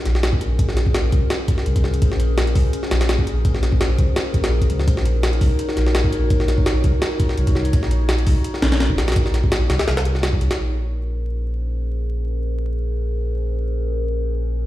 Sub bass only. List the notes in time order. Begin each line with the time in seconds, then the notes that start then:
0.05 A#1
1.12 C2
1.66 C2
2.02 A#1
2.55 C2
2.91 A#1
3.98 C2
4.34 A#1
4.70 C#2
4.88 A#1
5.41 C2
5.77 A#1
6.84 C2
7.38 C2
7.73 A#1
8.27 C2
8.63 A#1
9.70 C2
9.88 C2
10.59 A#1